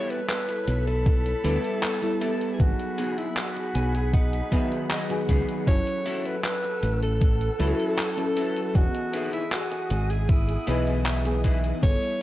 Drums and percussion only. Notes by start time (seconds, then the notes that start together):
0.10 closed hi-hat, tambourine
0.29 clap, closed hi-hat, tambourine
0.49 closed hi-hat
0.67 closed hi-hat, tambourine
0.87 closed hi-hat, tambourine
1.06 kick, closed hi-hat, tambourine
1.26 closed hi-hat
1.44 closed hi-hat, tambourine
1.64 closed hi-hat, tambourine
1.83 clap, closed hi-hat, tambourine
2.02 closed hi-hat
2.21 closed hi-hat, tambourine
2.41 closed hi-hat, tambourine
2.60 kick, closed hi-hat, tambourine
2.79 closed hi-hat
2.98 closed hi-hat, tambourine
3.18 closed hi-hat, tambourine
3.37 clap, closed hi-hat, tambourine
3.56 closed hi-hat
3.75 closed hi-hat, tambourine
3.95 closed hi-hat, tambourine
4.14 kick, closed hi-hat, tambourine
4.33 closed hi-hat
4.52 kick, closed hi-hat, tambourine
4.72 closed hi-hat, tambourine
4.90 clap, closed hi-hat, tambourine
5.10 closed hi-hat
5.29 kick, closed hi-hat, tambourine
5.49 closed hi-hat, tambourine
5.67 kick, closed hi-hat, tambourine
5.87 closed hi-hat
6.06 closed hi-hat, tambourine
6.26 closed hi-hat, tambourine
6.44 clap, closed hi-hat, tambourine
6.64 closed hi-hat
6.83 closed hi-hat, tambourine
7.02 closed hi-hat, tambourine
7.21 kick, closed hi-hat, tambourine
7.41 closed hi-hat
7.60 closed hi-hat, tambourine
7.80 closed hi-hat, tambourine
7.98 clap, closed hi-hat, tambourine
8.18 closed hi-hat
8.37 closed hi-hat, tambourine
8.56 closed hi-hat, tambourine
8.75 kick, closed hi-hat, tambourine
8.95 closed hi-hat
9.14 closed hi-hat, tambourine
9.33 closed hi-hat, tambourine
9.52 clap, closed hi-hat, tambourine
9.72 closed hi-hat
9.90 closed hi-hat, tambourine
10.10 closed hi-hat, tambourine
10.29 kick, closed hi-hat, tambourine
10.49 closed hi-hat
10.67 closed hi-hat, tambourine
10.87 closed hi-hat, tambourine
11.06 clap, closed hi-hat, tambourine
11.25 closed hi-hat
11.44 kick, closed hi-hat, tambourine
11.64 closed hi-hat, tambourine
11.83 kick, closed hi-hat, tambourine
12.02 closed hi-hat